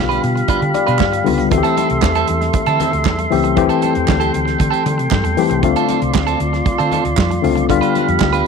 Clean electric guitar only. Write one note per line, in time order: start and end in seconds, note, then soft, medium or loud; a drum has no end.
0.09 0.22 D4 medium
0.09 0.22 F4 medium
0.09 0.22 B4 medium
0.23 muted clean electric guitar stroke soft
0.36 muted clean electric guitar stroke soft
0.48 0.63 D4 medium
0.48 0.61 F4 medium
0.48 0.60 B4 medium
0.61 muted clean electric guitar stroke soft
0.74 muted clean electric guitar stroke soft
0.87 0.98 D4 medium
0.87 0.99 F4 medium
0.87 0.98 B4 medium
1.00 muted clean electric guitar stroke soft
1.13 muted clean electric guitar stroke soft
1.38 muted clean electric guitar stroke soft
1.51 muted clean electric guitar stroke soft
1.63 1.75 C4 medium
1.63 1.76 E4 medium
1.63 1.76 A4 medium
1.76 1.88 C4 medium
1.76 1.89 E4 medium
1.76 1.88 A4 medium
2.03 muted clean electric guitar stroke soft
2.16 2.28 C4 medium
2.16 2.28 E4 medium
2.16 2.28 A4 medium
2.41 muted clean electric guitar stroke soft
2.54 muted clean electric guitar stroke soft
2.67 2.78 C4 medium
2.67 2.79 E4 medium
2.67 2.80 A4 medium
2.79 2.91 C4 medium
2.79 2.92 E4 medium
2.79 2.92 A4 medium
3.06 muted clean electric guitar stroke soft
3.19 muted clean electric guitar stroke soft
3.44 muted clean electric guitar stroke soft
3.57 muted clean electric guitar stroke soft
3.69 3.80 C4 medium
3.69 3.81 G4 medium
3.69 3.82 A4 medium
3.81 3.94 C4 medium
3.81 3.94 G4 medium
3.81 3.94 A4 medium
3.95 muted clean electric guitar stroke soft
4.07 muted clean electric guitar stroke soft
4.20 4.32 C4 medium
4.20 4.33 G4 medium
4.20 4.33 A4 medium
4.33 muted clean electric guitar stroke soft
4.46 muted clean electric guitar stroke soft
4.59 muted clean electric guitar stroke soft
4.71 4.83 C4 medium
4.71 4.84 G4 medium
4.71 4.85 A4 medium
4.84 muted clean electric guitar stroke soft
4.98 muted clean electric guitar stroke soft
5.11 muted clean electric guitar stroke soft
5.24 muted clean electric guitar stroke soft
5.50 muted clean electric guitar stroke soft
5.63 muted clean electric guitar stroke soft
5.76 5.87 C4 medium
5.76 5.88 F4 medium
5.76 5.89 A4 medium
5.88 6.00 C4 medium
5.88 6.01 F4 medium
5.88 6.01 A4 medium
6.14 muted clean electric guitar stroke soft
6.27 6.39 C4 medium
6.27 6.39 F4 medium
6.27 6.40 A4 medium
6.40 muted clean electric guitar stroke soft
6.53 muted clean electric guitar stroke soft
6.66 muted clean electric guitar stroke soft
6.78 6.90 C4 medium
6.78 6.91 F4 medium
6.78 6.92 A4 medium
6.91 7.03 C4 medium
6.91 7.04 F4 medium
6.91 7.04 A4 medium
7.18 muted clean electric guitar stroke soft
7.31 muted clean electric guitar stroke soft
7.56 muted clean electric guitar stroke soft
7.69 muted clean electric guitar stroke soft
7.81 7.94 D4 medium
7.81 7.94 F4 medium
7.81 7.95 B4 medium
7.95 8.06 D4 medium
7.95 8.07 F4 medium
7.95 8.06 B4 medium
8.08 muted clean electric guitar stroke soft
8.21 muted clean electric guitar stroke soft
8.33 8.46 D4 medium
8.33 8.46 F4 medium
8.33 8.47 B4 medium